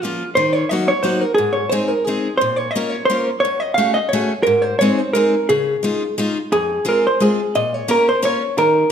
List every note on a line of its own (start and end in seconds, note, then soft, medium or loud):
0.02 0.22 F3 soft
0.02 0.23 A#3 soft
0.02 0.23 C#4 medium
0.02 0.29 F4 medium
0.02 0.23 F4 medium
0.35 0.63 D#3 medium
0.35 0.53 C5 medium
0.53 0.69 C#5 medium
0.69 0.90 F#3 medium
0.69 0.90 A#3 soft
0.69 0.90 D#4 medium
0.69 0.90 F#4 medium
0.69 0.88 D#5 medium
0.88 1.05 C#5 medium
1.03 1.23 F#3 medium
1.03 1.23 A#3 medium
1.03 1.24 D#4 soft
1.03 1.23 F#4 medium
1.03 1.21 C5 medium
1.21 1.34 A#4 medium
1.34 1.65 G#2 medium
1.34 1.56 G#4 loud
1.53 1.72 C#5 medium
1.69 1.92 G#3 medium
1.69 1.92 C4 soft
1.69 1.92 D#4 soft
1.69 1.92 G#4 medium
1.69 1.88 C5 medium
1.88 2.04 A#4 medium
2.04 2.27 G#3 soft
2.04 2.27 C4 soft
2.04 2.27 D#4 soft
2.04 2.33 G#4 medium
2.04 2.27 G#4 soft
2.38 2.68 A#2 medium
2.38 2.56 C5 medium
2.56 2.71 C#5 medium
2.71 2.90 D#5 medium
2.76 2.95 A#3 medium
2.76 2.95 C#4 soft
2.76 2.95 F4 soft
2.76 2.95 A#4 medium
2.90 3.05 C#5 medium
3.05 3.25 C5 medium
3.10 3.29 A#3 medium
3.10 3.29 C#4 medium
3.10 3.29 F4 soft
3.10 3.30 A#4 medium
3.40 3.60 C#5 loud
3.45 3.71 F#2 medium
3.60 3.74 D#5 medium
3.74 3.97 A3 medium
3.74 3.97 C#4 medium
3.74 3.94 F5 medium
3.79 3.97 F#4 soft
3.79 3.97 G#4 medium
3.94 4.12 D#5 medium
4.09 4.28 C#5 medium
4.13 4.32 A3 medium
4.13 4.32 C#4 soft
4.13 4.32 F#4 soft
4.13 4.32 G#4 medium
4.43 4.73 G#2 medium
4.43 4.62 A#4 loud
4.62 4.78 C5 medium
4.79 5.00 G#3 medium
4.79 5.00 C4 medium
4.79 5.00 D#4 soft
4.79 5.00 G#4 medium
4.79 4.98 C#5 medium
4.98 5.13 C5 medium
5.13 5.34 G#3 medium
5.13 5.34 C4 soft
5.13 5.34 D#4 soft
5.13 5.34 G#4 medium
5.13 5.49 A#4 medium
5.49 5.75 C#3 medium
5.49 6.14 G#4 medium
5.83 6.02 G#3 medium
5.83 6.02 C#4 soft
5.83 6.02 D#4 soft
5.83 6.03 F4 medium
6.18 6.37 G#3 medium
6.18 6.37 C#4 soft
6.18 6.37 D#4 medium
6.18 6.37 F4 medium
6.52 6.78 F2 medium
6.52 6.88 G#4 medium
6.85 7.05 G#3 soft
6.85 7.05 C4 medium
6.85 7.05 F4 soft
6.85 7.05 G#4 medium
6.85 7.07 A#4 medium
7.07 7.22 C5 medium
7.20 7.39 G#3 medium
7.20 7.40 C4 soft
7.20 7.40 F4 soft
7.20 7.56 G#4 medium
7.20 7.40 G#4 soft
7.55 7.81 A#2 medium
7.55 7.74 D#5 medium
7.74 7.90 C#5 medium
7.88 8.07 A#3 medium
7.88 8.07 C#4 medium
7.88 8.07 F4 soft
7.88 8.07 A#4 medium
7.88 8.08 A#4 medium
8.09 8.24 C5 medium
8.22 8.41 A#3 medium
8.22 8.41 C#4 medium
8.22 8.42 F4 soft
8.22 8.42 A#4 medium
8.22 8.58 C#5 medium
8.58 8.83 D#3 medium
8.58 8.92 A#4 medium